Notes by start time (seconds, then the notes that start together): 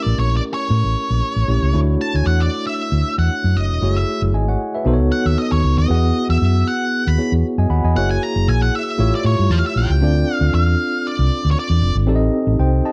Already playing: A3 C#4 E4 G4 A#4
0.02 A1 D5
0.18 A#1 C#5
0.37 D5
0.54 C#5
0.70 A2
0.84 A1
1.10 A#1
1.36 A1
1.48 A#1 A3 C#4 E4 G4 C#5
1.62 C#2
1.73 D2 A3 D4 E4 F#4 C#5
2.01 A5
2.14 D2 G#5
2.26 E2 F#5
2.41 D5
2.67 E5
2.92 D2
3.18 E2 F#5
3.44 F#2
3.56 F#1 D#5
3.70 E1
3.81 F#1 G#3 E4 F#4 G#4 C#5
3.87 A3
3.97 E5
4.22 F#1
4.34 G#1 D#5 G#5
4.48 C#5 F#5
4.75 B4 E5
4.85 B1 B3 D#4 F#4 A4 C5
4.94 C#5
4.99 C#2
5.12 F#5
5.26 D#2 E5
5.38 D#5
5.52 D#2 C#5
5.64 C#2
5.78 D#2 D#5
5.88 E2 B3 E4 F#4 G#4 F#5
6.29 E2 E5
6.42 F#2
6.68 F#5
7.07 D#2 B5
7.18 B3 E4 F#4 G#4 C#5
7.32 E2
7.58 F#2 D#5 G#5
7.70 D#2 F#5 B5
7.84 E2 D#5 G#5
7.95 F#1 A#3 E4 F#4 G#4 C#5 F#5
8.11 G#5
8.23 A#5
8.36 F#1
8.48 A#1 G#5
8.62 F#5
8.75 E5
8.98 A1 A3 E4 F4 G4 C#5
9.15 D5
9.24 A2 C#5
9.39 G2
9.50 E2 F5 A5
9.66 E5
9.76 A#1 G5
9.90 C#2
10.01 D2 C4 D4 F4 A4 D5
10.35 F5
10.41 D2
10.53 E2 F5
11.07 D5
11.19 C2
11.45 D2
11.51 C#5
11.59 D5
11.70 E2
11.82 F1
11.95 G1
12.07 A1 C4 D#4 G4 A4 D5
12.15 D#5
12.47 A1
12.59 C2 C5 G5
12.85 D#5 A5